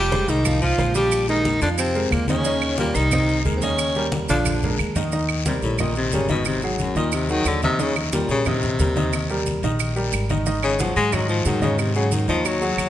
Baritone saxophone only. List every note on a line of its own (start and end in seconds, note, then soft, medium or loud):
0.00 0.30 G3 medium
0.28 0.61 D#3 medium
0.61 0.93 F3 medium
0.95 1.26 G3 medium
1.28 1.59 D#3 medium
1.61 1.69 D3 medium
1.77 2.13 C3 medium
2.11 2.27 A#2 medium
2.28 2.75 C#3 medium
2.78 2.96 A#2 medium
2.95 3.45 D#3 medium
3.56 3.64 C3 medium
3.62 4.12 C#3 medium
4.29 4.76 D3 medium
5.47 5.62 C3 medium
5.63 5.81 A2 medium
5.80 5.96 A#2 medium
5.97 6.15 C3 medium
6.14 6.29 C#3 medium
6.30 6.48 B2 medium
6.47 6.63 C3 medium
6.64 6.80 D#2 soft
6.80 6.96 F#2 medium
6.97 7.15 A#2 medium
7.14 7.32 C3 medium
7.30 7.49 D#3 loud
7.47 7.63 D3 medium
7.63 7.82 C3 medium
7.81 7.96 C#3 loud
7.97 8.13 F2 medium
8.13 8.30 A#2 medium
8.30 8.49 C#3 loud
8.47 9.47 C3 medium
10.63 10.82 C#3 loud
10.80 10.96 F3 medium
10.96 11.14 G#3 loud
11.13 11.29 F#3 medium
11.29 11.48 F3 medium
11.47 11.62 D#3 medium
11.63 11.81 C#3 medium
11.79 11.95 C3 medium
11.96 12.14 C#3 medium
12.13 12.28 D#3 medium
12.29 12.47 F3 medium
12.46 12.89 F#3 medium